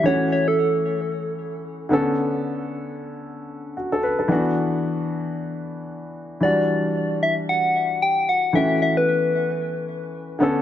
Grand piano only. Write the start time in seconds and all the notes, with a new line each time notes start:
0.03 E3 A3 C#4
0.07 F#4
1.89 D3 B3 C#4
1.93 A4
3.77 F#4
3.92 A4
4.03 B4
4.19 A4
4.28 E3 B3 D4
4.32 F#4
6.40 E3 G3 D4
6.45 F#4
8.53 E3 A3 C#4
8.57 F#4
10.39 D3 B3 C#4
10.43 A4